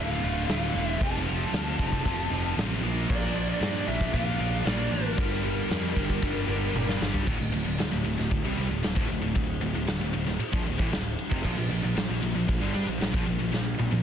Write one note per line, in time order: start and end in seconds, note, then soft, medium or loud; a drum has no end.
0.00 0.18 D1 loud
0.00 0.21 D2 loud
0.00 0.21 D2 medium
0.00 0.21 A2 medium
0.00 0.21 A2 loud
0.00 0.22 D3 loud
0.00 0.21 A3 loud
0.00 0.21 F4 loud
0.00 0.50 F5 loud
0.22 0.45 D1 medium
0.22 0.47 D2 medium
0.22 0.47 A2 loud
0.22 0.48 D3 loud
0.22 0.47 A3 medium
0.22 0.51 F4 medium
0.22 open hi-hat medium
0.48 0.70 D1 medium
0.48 0.73 D2 loud
0.48 0.74 A2 loud
0.48 0.74 D3 loud
0.48 1.00 A3 medium
0.48 1.03 F4 medium
0.48 0.86 F5 loud
0.48 snare loud
0.48 open hi-hat medium
0.63 snare soft
0.74 0.96 E1 medium
0.74 0.99 D2 medium
0.74 0.99 A2 medium
0.74 0.99 D3 loud
0.74 open hi-hat medium
0.86 0.99 E5 loud
0.99 1.44 F1 loud
0.99 1.25 F2 loud
0.99 1.26 C3 loud
0.99 1.27 F3 medium
0.99 2.30 A3 loud
0.99 2.30 C4 loud
0.99 2.29 F4 loud
0.99 2.55 A5 loud
0.99 kick loud
0.99 open hi-hat medium
1.16 snare soft
1.27 1.52 F2 medium
1.27 1.52 C3 medium
1.27 1.54 F3 loud
1.27 open hi-hat medium
1.53 1.75 D2 medium
1.53 1.78 F2 loud
1.53 1.79 C3 loud
1.53 1.80 F3 loud
1.53 snare loud
1.53 open hi-hat medium
1.79 2.01 F1 medium
1.79 2.04 F2 loud
1.79 2.05 C3 loud
1.79 2.05 F3 loud
1.79 kick medium
1.79 open hi-hat medium
1.92 kick medium
2.05 2.27 F1 loud
2.05 2.30 F2 medium
2.05 2.31 C3 loud
2.05 2.31 F3 medium
2.05 kick loud
2.05 open hi-hat loud
2.30 2.53 F1 medium
2.30 2.56 F2 loud
2.30 2.56 C3 loud
2.30 2.57 F3 loud
2.30 2.56 A3 medium
2.30 2.56 C4 medium
2.30 2.55 F4 medium
2.30 open hi-hat medium
2.57 2.79 A1 loud
2.57 2.82 F2 loud
2.57 2.82 C3 loud
2.57 2.82 F3 loud
2.57 2.82 A3 medium
2.57 2.83 C4 medium
2.57 2.83 F4 medium
2.57 snare loud
2.57 open hi-hat medium
2.83 3.05 A#1 medium
2.83 3.08 A#2 loud
2.83 3.08 F3 loud
2.83 3.10 A#3 loud
2.83 4.14 D4 loud
2.83 4.13 F4 loud
2.83 4.16 A#4 loud
2.83 open hi-hat medium
3.09 3.53 A#1 loud
3.09 3.33 A#2 medium
3.09 3.34 F3 medium
3.09 3.35 A#3 loud
3.09 3.47 D5 loud
3.09 kick loud
3.09 crash loud
3.24 snare soft
3.34 3.58 A#2 loud
3.34 3.60 F3 loud
3.34 3.60 A#3 loud
3.34 open hi-hat medium
3.49 3.87 D5 loud
3.60 3.83 G2 medium
3.60 3.86 A#2 loud
3.60 3.87 F3 loud
3.60 3.88 A#3 loud
3.60 snare loud
3.60 open hi-hat medium
3.87 4.09 A#1 medium
3.87 4.12 A#2 loud
3.87 4.12 F3 loud
3.87 4.12 A#3 loud
3.87 4.13 E5 loud
3.87 open hi-hat medium
4.01 kick medium
4.13 4.35 A#1 loud
4.13 4.37 A#2 medium
4.13 4.38 F3 medium
4.13 4.38 A#3 loud
4.13 4.40 D4 medium
4.13 4.39 F4 loud
4.13 4.38 A#4 loud
4.13 4.65 F5 loud
4.13 kick loud
4.13 open hi-hat medium
4.39 4.61 A#1 medium
4.39 4.64 A#2 loud
4.39 4.64 F3 medium
4.39 4.64 A#3 medium
4.39 5.19 D4 medium
4.39 4.91 F4 medium
4.39 4.90 A#4 medium
4.39 open hi-hat medium
4.65 4.87 A#1 medium
4.65 4.90 A#2 loud
4.65 4.90 F3 loud
4.65 4.91 A#3 loud
4.65 4.93 D5 loud
4.65 snare loud
4.65 open hi-hat medium
4.91 5.13 A1 medium
4.91 5.16 A#2 medium
4.91 5.16 F3 medium
4.91 5.17 A#3 loud
4.91 6.96 A#4 medium
4.91 open hi-hat medium
5.17 5.61 G1 loud
5.17 5.41 G2 loud
5.17 5.42 D3 medium
5.17 5.43 G3 loud
5.17 6.47 A#3 loud
5.17 6.47 D4 loud
5.17 6.46 G4 loud
5.17 kick loud
5.17 open hi-hat medium
5.32 snare soft
5.43 5.68 G2 medium
5.43 5.68 D3 medium
5.43 5.69 G3 loud
5.43 open hi-hat medium
5.69 5.92 F2 medium
5.69 5.94 G2 loud
5.69 5.94 D3 loud
5.69 5.95 G3 loud
5.69 snare loud
5.69 open hi-hat medium
5.95 6.18 G1 medium
5.95 6.19 G2 medium
5.95 6.20 D3 loud
5.95 6.20 G3 loud
5.95 kick medium
5.95 open hi-hat medium
6.10 kick medium
6.20 6.44 G1 loud
6.20 6.46 G2 medium
6.20 6.47 D3 medium
6.20 6.47 G3 loud
6.20 kick loud
6.20 open hi-hat medium
6.47 6.70 G1 medium
6.47 6.72 G2 medium
6.47 6.72 D3 medium
6.47 6.73 G3 loud
6.47 6.73 A#3 medium
6.47 6.73 D4 medium
6.47 6.72 G4 medium
6.47 open hi-hat medium
6.51 6.72 G2 medium
6.73 6.96 G1 medium
6.73 6.98 G2 medium
6.73 6.99 D3 loud
6.73 6.99 G3 loud
6.73 7.26 A#3 medium
6.73 7.26 D4 medium
6.73 7.26 G4 loud
6.73 high tom medium
6.89 snare medium
6.99 7.23 G1 medium
6.99 7.24 G2 medium
6.99 7.25 D3 medium
6.99 7.25 G3 loud
6.99 snare medium
7.14 floor tom medium
7.26 7.39 D1 medium
7.26 7.38 D2 loud
7.26 7.38 A2 loud
7.26 kick loud
7.26 crash loud
7.39 7.53 D1 medium
7.39 7.51 D2 medium
7.39 7.51 A2 medium
7.52 7.66 D1 medium
7.52 7.63 D2 medium
7.52 7.63 A2 medium
7.52 ride medium
7.64 7.79 D1 medium
7.64 7.77 D2 medium
7.64 7.77 A2 medium
7.78 7.92 D1 medium
7.78 7.90 D2 medium
7.78 7.91 A2 medium
7.78 snare loud
7.78 ride loud
7.91 8.05 D1 medium
7.91 8.03 D2 medium
7.91 8.03 A2 medium
8.04 8.17 D1 medium
8.04 8.17 D2 medium
8.04 8.17 A2 medium
8.04 ride medium
8.18 8.30 D1 medium
8.18 8.29 D2 medium
8.18 8.30 A2 medium
8.18 snare soft
8.31 8.43 D1 medium
8.31 8.44 D2 medium
8.31 8.44 A2 medium
8.31 kick loud
8.31 ride loud
8.44 8.57 C2 loud
8.44 8.55 C3 medium
8.44 8.56 G3 loud
8.56 8.70 C2 medium
8.56 8.69 C3 loud
8.56 8.69 G3 loud
8.56 ride medium
8.69 8.83 D1 medium
8.69 8.82 D2 medium
8.69 8.82 A2 medium
8.83 8.96 D1 medium
8.83 8.94 D2 medium
8.83 8.95 A2 medium
8.83 snare loud
8.83 ride medium
8.95 9.09 D1 medium
8.95 9.08 D2 medium
8.95 9.08 A2 loud
8.95 kick loud
9.09 9.22 D1 medium
9.09 9.20 D2 medium
9.09 9.21 A2 medium
9.09 ride medium
9.22 9.35 D1 medium
9.22 9.34 D2 medium
9.22 9.35 A2 medium
9.35 9.60 D1 medium
9.35 9.56 D2 medium
9.35 9.57 A2 medium
9.35 kick medium
9.35 ride medium
9.61 9.74 D1 medium
9.61 9.74 D2 medium
9.61 9.74 A2 medium
9.61 ride medium
9.75 9.87 D1 medium
9.75 9.87 D2 medium
9.75 9.88 A2 medium
9.87 10.00 D1 medium
9.87 10.00 D2 medium
9.87 10.00 A2 medium
9.87 snare loud
9.87 ride loud
10.01 10.13 D1 medium
10.01 10.12 D2 medium
10.01 10.13 A2 medium
10.13 10.26 D1 medium
10.13 10.25 D2 medium
10.13 10.26 A2 medium
10.13 ride medium
10.26 10.39 D1 medium
10.26 10.39 D2 medium
10.26 10.40 A2 medium
10.26 snare soft
10.40 muted distorted electric guitar stroke medium
10.40 muted picked electric bass stroke soft
10.40 ride loud
10.53 10.65 A#1 medium
10.53 10.65 A#2 medium
10.53 10.65 F3 loud
10.53 kick loud
10.66 10.78 D1 medium
10.66 10.78 D2 medium
10.66 10.77 A2 medium
10.66 ride medium
10.79 10.91 A1 loud
10.79 10.91 A2 loud
10.79 10.91 E3 loud
10.79 kick loud
10.92 11.16 D1 medium
10.92 11.13 D2 medium
10.92 11.13 A2 medium
10.92 snare loud
10.92 ride loud
11.19 ride medium
11.31 11.43 F1 loud
11.31 11.43 F2 medium
11.31 11.44 C3 loud
11.31 kick loud
11.45 11.57 A#1 medium
11.45 11.57 A#2 medium
11.45 11.57 F3 loud
11.45 kick medium
11.45 crash loud
11.58 11.70 A#1 medium
11.58 11.70 A#2 medium
11.58 11.70 F3 medium
11.71 11.83 A#1 medium
11.71 11.83 A#2 medium
11.71 11.83 F3 medium
11.71 ride medium
11.84 11.96 A#1 medium
11.84 11.95 A#2 medium
11.84 11.96 F3 medium
11.96 12.09 A#1 medium
11.96 12.09 A#2 medium
11.96 12.10 F3 medium
11.96 snare loud
11.96 ride loud
12.10 12.22 A#1 medium
12.10 12.21 A#2 medium
12.10 12.22 F3 medium
12.22 12.35 A#1 medium
12.22 12.35 A#2 medium
12.22 12.35 F3 medium
12.22 ride medium
12.35 12.48 A#1 medium
12.35 12.47 A#2 medium
12.35 12.48 F3 medium
12.48 12.61 A#1 medium
12.48 12.61 A#2 medium
12.48 12.61 F3 medium
12.48 kick loud
12.48 ride loud
12.61 12.74 G1 medium
12.61 12.74 G2 loud
12.61 12.74 D3 loud
12.74 12.87 G2 medium
12.74 12.87 G3 loud
12.74 12.87 D4 loud
12.74 ride medium
12.88 13.00 A#1 medium
12.88 12.99 A#2 medium
12.88 13.00 F3 medium
13.01 13.13 A#1 medium
13.01 13.12 A#2 medium
13.01 13.13 F3 medium
13.01 snare loud
13.01 ride loud
13.13 13.26 A#1 loud
13.13 13.25 A#2 medium
13.13 13.26 F3 medium
13.13 kick loud
13.27 13.39 A#1 medium
13.27 13.38 A#2 medium
13.27 13.38 F3 medium
13.27 ride medium
13.39 13.52 A#1 medium
13.39 13.51 A#2 medium
13.39 13.52 F3 medium
13.53 13.77 A#1 medium
13.53 13.73 A#2 medium
13.53 13.74 F3 medium
13.53 snare medium
13.79 13.91 A#1 medium
13.79 13.90 A#2 medium
13.79 13.90 F3 medium
13.79 high tom medium
13.91 14.03 A#1 medium
13.91 14.03 A#2 medium
13.91 14.03 F3 medium
13.91 high tom medium